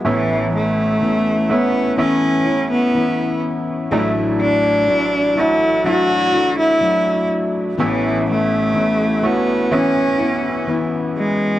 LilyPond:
<<
  \new Staff \with { instrumentName = "Steel-string acoustic guitar" } { \time 4/4 \key a \major \tempo 4 = 62 <a, e b cis' e'>4 <e b cis' e'>8 <b cis' e'>8 <e b cis' e'>8 <b cis' e'>8 <e b cis' e'>4 | <a, fis a d' e'>4 <fis a d' e'>8 <a d' e'>8 <fis a d' e'>8 <a d' e'>8 <fis a d' e'>4 | <a, e b cis' e'>4 <e b cis' e'>8 <b cis' e'>8 <e b cis' e'>8 <b cis' e'>8 <e b cis' e'>4 | }
  \new Staff \with { instrumentName = "Cello" } { \time 4/4 \key a \major e8 a4 b8 cis'8. b8. r8 | a8 d'4 e'8 fis'8. e'8. r8 | e8 a4 b8 cis'4 r8 gis8 | }
  \new Staff \with { instrumentName = "Grand piano" } { \time 4/4 \key a \major <a b cis' e'>4. <a b cis' e'>8 <a b cis' e'>2 | <fis a d' dis' e'>4. <fis a d' fis'>8 <fis a d' e'>2 | <a b cis' e'>4. <a b cis' fis'>8 <e b cis' e'>2 | }
  \new Staff \with { instrumentName = "Grand piano" } { \clef bass \time 4/4 \key a \major <a,, a,>1 | <a,, a,>1 | <a,, a,>1 | }
>>